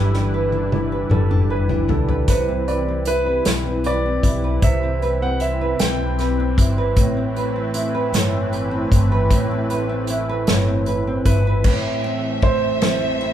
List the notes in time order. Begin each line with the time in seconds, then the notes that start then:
Already playing: G1 D3 E3 G3 D4 E4 B4
0.14 D4, snare
0.34 B4
0.52 D4, high tom
0.72 E4, high tom
0.92 B4
1.10 F#1 G3 A4, mid tom
1.31 D4, mid tom
1.50 B4
1.69 D4, floor tom
1.88 B1 E4 A4, floor tom
2.09 B4, floor tom
2.27 C2 C3 C4 B4, kick, closed hi-hat
2.48 C4
2.68 B4 D5, closed hi-hat
2.88 C4
3.05 E4 B4, closed hi-hat
3.26 B4
3.45 B1, snare, closed hi-hat
3.66 C4
3.84 B4 D5, closed hi-hat
4.06 C4
4.23 B1 E4, kick, closed hi-hat
4.44 B4
4.62 C2 C3 E5, kick, closed hi-hat
4.83 C4
5.02 B4, closed hi-hat
5.22 C4 F#5
5.40 E4 E5, closed hi-hat
5.61 B4
5.79 B1 G5, snare, closed hi-hat
6.00 C4
6.19 B4, snare, closed hi-hat
6.40 C4
6.58 G1 E4, kick, closed hi-hat
6.78 B4
6.96 A1 A2 E3 A3 E4 B4, kick, closed hi-hat
7.17 C4
7.36 B4, closed hi-hat
7.56 C4
7.74 E4, closed hi-hat
7.95 B4
8.13 G1 A2, snare, closed hi-hat
8.32 C4
8.52 B4, closed hi-hat
8.71 C4
8.92 G1 E4, kick, closed hi-hat
9.12 B4
9.31 A1 A2, kick, closed hi-hat
9.51 C4
9.70 B4, closed hi-hat
9.89 C4
10.07 E4, closed hi-hat
10.29 B4
10.47 G1 A2, snare, closed hi-hat
10.67 C4
10.86 B4, closed hi-hat
11.07 C4
11.25 G1 E4 B4, kick, closed hi-hat
11.47 B4
11.64 A2 E3 A3 C4 E5, kick, crash
12.04 C4, ride
12.42 E4 C5, kick, ride
12.82 C4, snare, ride
13.21 E4, ride